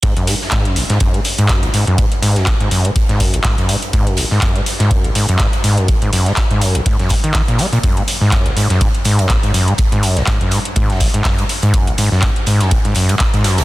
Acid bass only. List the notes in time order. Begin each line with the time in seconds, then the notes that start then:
0.03 G#2
0.17 F#2
0.27 G#2
0.52 G#2
0.65 F#2
0.76 G#1
0.90 G#2
1.14 G#2
1.39 G#2
1.49 F#2
1.63 G#1
1.74 G#2
1.87 F#2
1.98 G#2
2.22 G#2
2.36 F#2
2.47 G#1
2.60 G#2
2.71 F#2
2.85 G#2
3.09 G#2
3.20 F#2
3.34 G#1
3.45 G#2
3.58 F#2
3.69 G#2
3.93 G#2
4.07 F#2
4.18 G#1
4.31 G#2
4.56 G#2
4.80 G#2
4.91 F#2
5.04 G#1
5.15 G#2
5.29 F#2
5.40 G#2
5.64 G#2
5.78 F#2
5.88 G#1
6.02 G#2
6.13 F#2
6.26 G#2
6.51 G#2
6.62 F#2
6.75 G#1
6.86 G#2
6.99 F#2
7.10 G#2
7.24 D#3
7.35 D#3
7.48 A#2
7.59 G#3
7.73 A#2
7.83 F#2
7.97 G#2
8.21 G#2
8.32 F#2
8.46 G#1
8.57 G#2
8.70 F#2
8.81 G#2
9.05 G#2
9.19 F#2
9.30 G#1
9.43 G#2
9.54 F#2
9.68 G#2
9.92 G#2
10.03 F#2
10.16 G#1
10.27 G#2
10.41 F#2
10.52 G#2
10.76 G#2
10.90 F#2
11.00 G#1
11.14 G#2
11.38 G#2
11.63 G#2
11.74 F#2
11.87 G#1
11.98 G#2
12.12 F#2
12.23 G#2
12.47 G#2
12.61 F#2
12.71 G#1
12.85 G#2
12.96 F#2
13.09 G#2
13.34 G#2
13.45 F#2
13.58 G#1